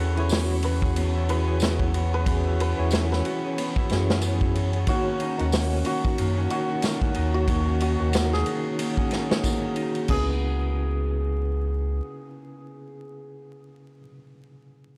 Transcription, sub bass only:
Already playing: E2
2.79 E2
3.90 F#2
5.40 D#2
6.19 F#2
7.17 D#2
8.00 D#2
10.09 C#2

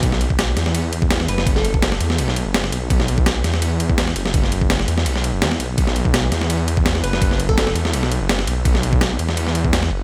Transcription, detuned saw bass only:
0.03 B1
0.57 E2
1.29 F#1
2.01 E2
2.19 B1
2.46 F#1
2.72 B1
2.90 B1
3.44 E2
4.16 F#1
4.88 E2
5.06 B1
5.33 F#1
5.42 E2
5.60 B1
5.78 B1
6.32 E2
7.03 F#1
7.75 E2
7.93 B1
8.21 F#1
8.47 B1
8.65 B1
9.19 E2
9.91 F#1

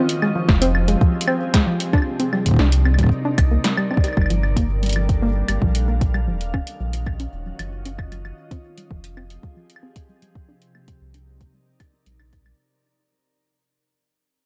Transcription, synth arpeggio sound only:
0.22 G#3
0.35 F3
0.62 C4
0.88 G#3
1.01 F3
1.28 C4
1.54 G#3
1.67 F3
1.93 D4
2.20 C4
2.33 G3
2.59 D4
2.85 C4
2.99 G3
3.25 D4
3.51 A#3
3.65 G3
3.78 G3
3.91 C4
4.04 G4
4.17 G3
4.30 F3
4.57 A#3
4.83 G3
4.96 F3
5.22 A#3
5.49 G3
5.62 F3
5.88 A#3
6.14 G3
6.28 F3
6.54 C#4
6.80 F#3
6.94 F3
7.20 C#4
7.46 F#3
7.59 F3
7.85 C#4
8.12 F#3
8.25 F3
8.51 C4
8.78 G3
8.91 F3
9.17 C4
9.43 G3
9.57 F3
9.83 C4
10.09 G3
10.22 G3
10.49 D4
10.75 A#3
10.88 G3
11.14 D4
11.41 A#3
11.54 G3
11.80 G4
11.93 C4
12.07 G3
12.20 D4
12.33 D#4
12.46 G3

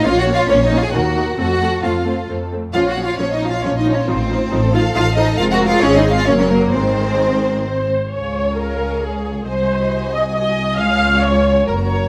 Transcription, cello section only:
0.05 F4
0.21 F#4
0.35 F4
0.50 C#4
0.65 D#4
0.79 F4 G#4
0.94 F#4
1.39 F#4
1.84 F4
2.74 F4
2.90 F#4
3.05 F4
3.19 C#4
3.35 D#4
3.50 F4
3.64 C#4
3.80 D#4
3.94 C#4
4.09 C4
4.74 F4
4.96 F4
5.17 D#4
5.39 F4
5.54 F#4
5.69 F4
5.83 C#4
5.98 D#4
6.13 F4
6.28 C#4
6.39 C#4
6.50 A#3
6.73 C4
8.13 C#2
9.48 C2
10.79 C#2
11.68 F#2

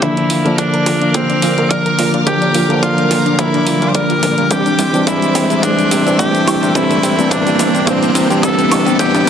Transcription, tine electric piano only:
0.02 D3 F3 A#3 D4
0.45 D3 F3 A#3 D4
2.26 D3 F3 A#3 D4
2.68 D3 F3 A#3 D4
4.51 E3 G3 C4 D4
4.93 E3 G3 C4 D4
5.63 E3 G3 C4 D4
6.05 E3 G3 C4 D4
6.75 E3 G3 C4 D4
7.18 E3 G3 C4 D4
7.87 E3 G3 C4 D4
8.30 E3 G3 C4 D4
8.99 E3 G3 C4 D4

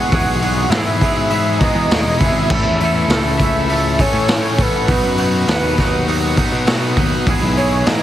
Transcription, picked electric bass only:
0.12 E2
0.24 B1
0.70 G#2
0.85 G#2
1.75 E3
1.88 D#2
2.03 E1
2.20 F#1
2.33 G#1
2.49 A1
2.63 E2
3.08 C#2
3.24 C#2
4.13 A2
4.58 A1
4.88 B1
5.03 F#2
5.47 D#2
5.63 D#2
6.52 B2
6.96 D#2
7.27 E2
7.41 B1
7.87 G#2

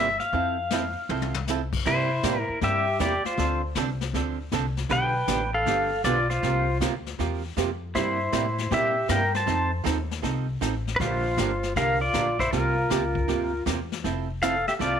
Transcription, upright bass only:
Already playing: G1
0.33 F2
1.09 C2
1.85 C3
2.23 A2
2.49 muted upright bass stroke
2.62 G2
2.99 E2
3.24 muted upright bass stroke
3.38 D2
3.75 C2
4.13 D2
4.52 C2
4.90 B1
5.28 A1
5.66 G1
6.04 B1
6.43 C2
6.81 D2
7.19 E2
7.57 F2
7.95 G2
8.32 A2
8.71 A#2
9.09 G2
9.47 F2
9.85 D#2
10.23 C2
10.62 A1
11.00 A#1
11.37 G1
11.76 C2
12.14 A#1
12.52 C2
12.90 C#2
13.28 D2
13.66 E2
14.04 F1
14.80 C2

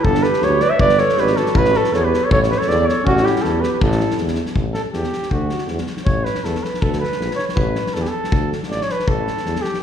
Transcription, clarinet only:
0.00 G4
0.06 D4
0.25 G4
0.41 G4
0.62 B4
0.72 C#5
0.81 B4
0.99 A4
1.17 G4
1.35 F#4
1.55 E4
1.72 F#4
1.92 A4
2.01 G4
2.23 A4
2.32 A4
2.51 G4
2.59 A4
2.68 A4
2.87 A4
3.03 C#4
3.22 E4
3.43 E4
3.61 G4
3.74 G4
3.82 E4

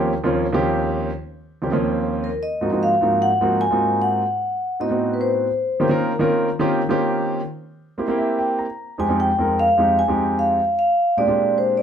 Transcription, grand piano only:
Already playing: D#2 F3 A#3 C4 C#4 G4
0.24 D#2 F3 A#3 C4 C#4 F4
0.53 D#2 F3 A#3 C4 C#4 G4
1.62 D#2 F3 A#3 C4 C#4 G4
1.72 D#2 F3 A#3 C4 C#4 F4
2.61 G#2 F3 A#3 C4 D#4 F#4
2.71 G#2 F3 A#3 C4 D#4 F#4
3.01 G#2 F3 A#3 C4 D#4 F#4
3.41 G#2 F3 A#3 C4 D#4 F#4
3.70 G#2 A#3 C4 D#4 F4 F#4
4.80 A2 B3 C4 D#4 F#4
4.90 A2 B3 C4 D#4 F#4
5.80 D#3 A#3 C4 C#4 F4 G4
5.89 D#3 A#3 C4 C#4 F4 A#4
6.19 D#3 A#3 C4 C#4 F4 A#4
6.59 D#3 A#3 C4 C#4 F4 G4
6.89 D#3 A#3 C4 C#4 F4 G4
7.98 A#3 C4 E4 G4 C5
8.08 A#3 C4 E4 G4
8.18 E5
8.39 G5
8.59 A#5
8.98 F2 G#3 C4 D#4 G4
9.08 F2 G#3 C4 D#4 G4
9.38 F2 G#3 C4 D#4 A#4
9.77 F2 G#3 C4 D#4 G4
10.08 F2 G#3 C4 D#4 G4
11.17 A#2 G#3 C4 D4 F4 G4
11.27 A#2 G#3 C4 D4 F4 G4

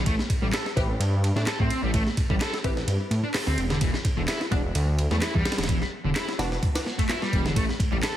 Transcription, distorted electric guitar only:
0.06 A3
0.43 G3
0.53 A4
0.77 G4
1.37 D4
1.47 A4
1.59 C4
1.83 G3
1.94 A3
2.30 G3
2.41 A4
2.65 G4
3.24 D4
3.35 A4
3.47 C4
3.70 D3
3.82 E3
4.17 D3
4.28 E4
4.52 D4
5.11 A3
5.22 E4
5.35 G3
5.58 D3
5.69 E3
6.05 D3
6.16 E4
6.39 D4
6.99 A3
7.10 E4
7.22 G3
7.45 D3
7.56 A3
7.92 G3
8.03 A4

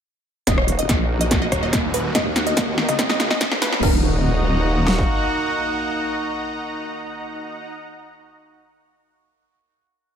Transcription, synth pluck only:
0.47 D#5
0.79 D#5
1.21 D#5
1.42 D#5
1.63 D#5
1.94 B4
2.15 D#5
2.47 D#5
2.89 D#5
3.10 D#5
3.31 D#5
3.62 B4
3.83 A#4

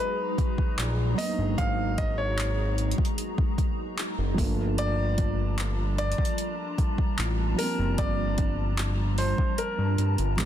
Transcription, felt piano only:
Already playing: F#3 G#3 B3 D#4
1.14 F#3 A#3
1.20 B3 D4
1.29 D#4
4.34 F3 A3
4.40 A#3 D4
7.54 F3 G3
7.60 A#3 C4
10.36 F3 G3 A#3
10.41 D4

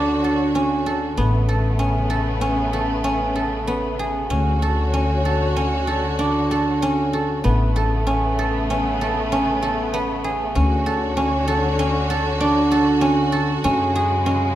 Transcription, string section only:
Already playing: D3 F#4 C#5
1.18 C#3 A3 B3
4.30 D3 F#4 C#5
7.46 C#3 A3 B3
10.56 D3 F#4 C#5
13.65 C#3 G#3

